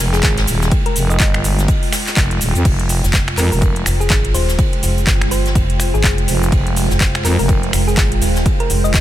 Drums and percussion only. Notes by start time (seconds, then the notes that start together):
0.00 shaker
0.13 snare, ride, shaker
0.23 kick, snare, clap, closed hi-hat, ride, shaker
0.37 snare, closed hi-hat, ride
0.47 open hi-hat, ride, shaker
0.62 snare, shaker
0.71 kick, closed hi-hat, ride, shaker
0.86 closed hi-hat
0.95 open hi-hat, ride, shaker
1.10 closed hi-hat, shaker
1.20 kick, snare, clap, closed hi-hat, shaker
1.34 finger snap, closed hi-hat
1.44 open hi-hat, ride, shaker
1.59 snare, closed hi-hat, shaker
1.68 kick, closed hi-hat, ride, shaker
1.83 open hi-hat
1.93 finger snap, snare, open hi-hat, ride, shaker
2.07 snare, clap, ride, shaker
2.17 kick, snare, clap, closed hi-hat, ride, shaker
2.31 closed hi-hat
2.41 open hi-hat, shaker
2.55 closed hi-hat, ride, shaker
2.65 kick, closed hi-hat, crash, ride, shaker
2.79 closed hi-hat, ride
2.89 open hi-hat, ride, shaker
3.04 snare, shaker
3.13 kick, snare, clap, closed hi-hat, shaker
3.28 finger snap, closed hi-hat
3.38 clap, open hi-hat, ride, shaker
3.52 open hi-hat, shaker
3.61 kick, closed hi-hat, ride, shaker
3.76 closed hi-hat
3.86 finger snap, open hi-hat, ride, shaker
4.01 shaker
4.10 kick, snare, clap, closed hi-hat, ride, shaker
4.25 closed hi-hat
4.34 open hi-hat, ride, shaker
4.48 snare, shaker
4.59 kick, closed hi-hat, ride, shaker
4.73 closed hi-hat
4.83 open hi-hat, ride, shaker
4.98 shaker
5.07 kick, snare, clap, closed hi-hat, shaker
5.21 finger snap, closed hi-hat
5.31 open hi-hat, ride, shaker
5.46 snare, closed hi-hat, shaker
5.55 kick, closed hi-hat, ride, shaker
5.70 closed hi-hat
5.80 finger snap, open hi-hat, ride, shaker
5.95 shaker
6.04 kick, snare, clap, closed hi-hat, shaker
6.18 closed hi-hat, ride
6.28 open hi-hat, ride, shaker
6.43 shaker
6.52 kick, closed hi-hat, ride, shaker
6.67 closed hi-hat, ride
6.76 open hi-hat, ride, shaker
6.90 snare, shaker
7.01 kick, snare, clap, closed hi-hat, shaker
7.15 finger snap, closed hi-hat
7.25 clap, open hi-hat, ride, shaker
7.39 open hi-hat, shaker
7.49 kick, closed hi-hat, ride, shaker
7.63 closed hi-hat
7.73 finger snap, open hi-hat, ride, shaker
7.88 shaker
7.97 kick, snare, clap, closed hi-hat, ride, shaker
8.12 closed hi-hat
8.21 open hi-hat, ride, shaker
8.35 snare, shaker
8.46 kick, closed hi-hat, ride, shaker
8.60 closed hi-hat
8.69 open hi-hat, ride, shaker
8.85 shaker
8.94 kick, snare, clap, closed hi-hat, ride, shaker